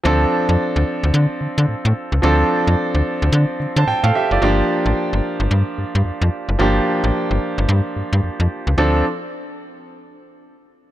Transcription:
0.04 D2 F3 C4 D4 A4
0.49 F2
0.76 D2
1.03 D2
1.14 D3
1.41 D3
1.58 D3
1.69 A2
1.85 A2
2.12 C#2
2.22 D2 F3 C4 D4 A4
2.67 F2
2.95 D2
3.22 D2
3.33 D3
3.60 D3
3.76 D3 C5 A5
3.87 A2 G5
4.03 A2 A4 F5
4.15 G4 E5
4.31 F#1 F4 D5
4.41 G1 F3 A#3 D4 G4
4.86 A1
5.13 G1
5.40 G1
5.51 G2
5.78 G2
5.95 G2
6.05 F2
6.22 F2
6.49 F#1
6.59 G1 F3 A#3 D4 G4
7.04 A1
7.31 G1
7.58 G1
7.69 G2
7.96 G2
8.13 G2
8.24 F2
8.40 F2
8.67 C#2
8.78 D2 F3 C4 D4 A4

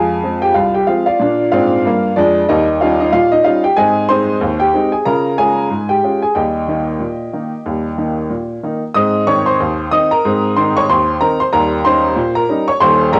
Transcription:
Already playing: F2 G#3 G#4 F5 G#5
0.23 F3 G#3 C4
0.42 G4 G5
0.54 C2 F4 F5
0.75 G4 G5
0.87 F3 G#3 C4 F4 F5
1.06 F4 D5 F5
1.20 A#2 D4
1.52 G#2 C4 F4 D5 F5
1.85 G2 A#3
2.16 F2 G#3 D4 D5
2.49 D#2 G3 D#4 A#4 D#5
2.81 G3 C#4 D#4 F4 F5
3.00 D#4 D#5
3.13 A#2 F4 F5
3.32 D#4 D#5
3.44 G3 C#4 D#4 F4 F5
3.64 G4 G5
3.77 G#2 C4 G#4 D#5 G#5
4.09 G#3 C4 D#4 C5 C6
4.41 D#2
4.60 G4 G5
4.74 G#3 C4 D#4
4.92 G#4 G#5
5.05 C#3 F4 A#4 A#5
5.38 G#3 C#4 F4 G#4 G#5
5.70 G#2
5.89 G4 G5
6.03 G#3 C#4 F4
6.22 G#4 G#5
6.35 D#2 G3 G4 D#5 G5
6.68 D#3 A#3 D#4
7.00 A#2
7.33 D#3 A#3 D#4
7.66 D#2 G3
7.98 D#3 A#3 D#4
8.30 A#2
8.63 D#3 A#3 D#4
8.94 G#2 C4 D#5 D#6
9.27 D#3 C4 D#4 C#5 C#6
9.46 C5 C6
9.60 D#2
9.91 D#3 C4 D#4 D#5 D#6
10.11 A#4 A#5
10.25 G#2 C4
10.57 D#3 C4 D#4 C5 C6
10.77 C#5 C#6
10.90 D#2 C5 C6
11.21 D#3 C4 D#4 A#4 A#5
11.40 C5 C6
11.53 D#2 G3 A#4 A#5
11.85 G3 C#4 D#4 C5 C6
12.16 A#2
12.35 A#4 A#5
12.49 G3 C#4 D#4
12.68 C#5 C#6
12.80 D#1 D#2 C5 C6
13.13 A#1 A#4 A#5

